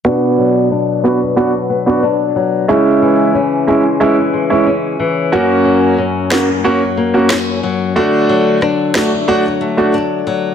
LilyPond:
<<
  \new Staff \with { instrumentName = "Grand piano" } { \time 4/4 \key b \dorian \tempo 4 = 91 <b d' fis'>4 r8 <b d' fis'>16 r16 <b d' fis'>16 r8 <b d' fis'>16 r4 | <gis cis' e'>4 r8 <gis cis' e'>16 r16 <gis cis' e'>16 r8 <gis cis' e'>16 r4 | <ais cis' fis'>4 r8 <ais cis' fis'>16 r16 <ais cis' fis'>16 r8 <ais cis' fis'>16 r4 | <a d' fis'>4 r8 <a d' fis'>16 r16 <a d' fis'>16 r8 <a d' fis'>16 r4 | }
  \new Staff \with { instrumentName = "Nylon-string guitar" } { \clef bass \time 4/4 \key b \dorian <b, d'>8 fis8 d'8 b8 fis8 b8 d'8 fis8 | <cis cis'>8 e8 cis'8 gis8 e8 gis8 cis'8 e8 | <fis, cis'>8 fis8 cis'8 ais8 fis8 ais8 cis'8 fis8 | <d d'>8 fis8 d'8 a8 fis8 a8 d'8 fis8 | }
  \new DrumStaff \with { instrumentName = "Drums" } \drummode { \time 4/4 r4 r4 r4 r4 | r4 r4 r4 r4 | r4 r8 <ss sn>8 r4 <ss sn>4 | r4 ss8 <ss sn>8 r4 r4 | }
>>